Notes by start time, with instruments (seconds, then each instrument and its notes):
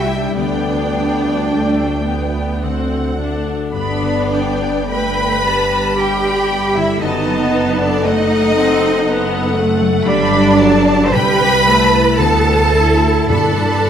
Already playing: double bass section C2, harp C3 G3 C4 G5, viola section G3, violin section E5 G5
0.07 cello section E4, harp G4
0.17 cello section D4
0.27 cello section E4
0.37 double bass section D2, harp D3, viola section B3, cello section D4, violin section D5 G5
0.66 harp D4
0.94 harp G3
1.50 viola section A3, harp B4
1.78 harp G4
2.07 viola section B3, harp G5
2.36 harp B5
2.63 harp D3, viola section C4, violin section F#5
2.91 harp D4
3.19 harp A3, viola section D4
3.46 harp F#4
3.73 double bass section G1, harp G2, viola section B3, cello section D4, violin section D5 B5
4.01 harp D3
4.31 harp B3, violin section G5
4.61 harp G4
4.90 viola section A3, cello section B4, harp D5, violin section G5 B5
5.18 harp B4
5.45 viola section G3, harp G5, violin section A5
5.72 harp D6
5.98 cello section G4, harp B4, violin section G5 B5
6.24 harp D5
6.50 harp B3
6.75 harp D3, cello section E4, violin section E5
7.02 double bass section F#1, harp F#2, viola section B3, cello section D#4, violin section D#5 A5
7.27 harp F#3
7.54 harp C4
7.79 cello section D4, harp A4, violin section D5
8.06 viola section A3, cello section D#4, harp C5, violin section D#5 F#5
8.31 harp A4
8.56 viola section C4, harp A5
8.81 harp C6
9.06 viola section B3, harp C5, violin section F#5
9.32 harp A4
9.56 viola section A3, harp C4
9.81 harp F#3
10.06 double bass section G1, harp G2, viola section G3, cello section D4, violin section D5 B5
10.32 harp D3
10.60 viola section F#3, violin section A5
10.87 harp G4
11.07 cello section C5
11.13 double bass section C2, harp C3, viola section G3, cello section B4, violin section G5 B5
11.41 harp G3
11.67 viola section A3, harp E4, violin section A5
11.92 harp G4
12.18 double bass section D2, harp D3, viola section B3, cello section A4, violin section A5
12.46 harp A3
12.73 viola section E4, harp E4
13.02 harp F#4
13.29 double bass section G2, harp G2, timpani G2, viola section D4, cello section A4, violin section A5 B5
13.59 harp D3